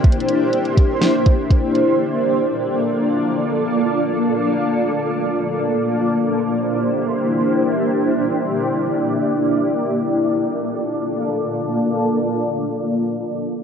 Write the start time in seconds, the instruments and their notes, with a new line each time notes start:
Already playing: ambient pad A#3 D4 E4 G4 C5
0.04 kick, closed hi-hat
0.12 closed hi-hat
0.20 closed hi-hat
0.29 closed hi-hat
0.53 closed hi-hat
0.65 closed hi-hat
0.77 kick, closed hi-hat
1.02 snare, closed hi-hat
1.26 kick, closed hi-hat
1.50 kick, closed hi-hat
1.75 closed hi-hat
1.99 ambient pad A#3 F4 A4 D5
5.89 ambient pad D4 E4 G4 C5
7.85 ambient pad D5
9.80 ambient pad A#3 D4 F4 A4 D5